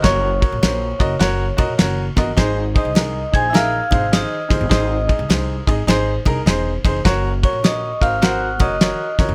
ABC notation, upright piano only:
X:1
M:4/4
L:1/8
Q:"Swing" 1/4=103
K:Abmix
V:1 name="Upright piano"
[GBd] [GBd] [GBc] [GBe] [GBd] [GBe] [GBd] [GBe] | [EAc] [EAc] [EAB] [EAc] [EAB] [EAc] [EAc] [EAc] | [EAc] [EAe] [EAc] [EAe] [EAc] [EAB] [EAc] [EAc] | [GBd] [GBd] [GBd] [GBc] [GBc] [GBd] [GBd] [GBd] |]
V:2 name="Upright piano" clef=bass
z8 | A,,3 z4 z | A,,3 z4 z | z8 |]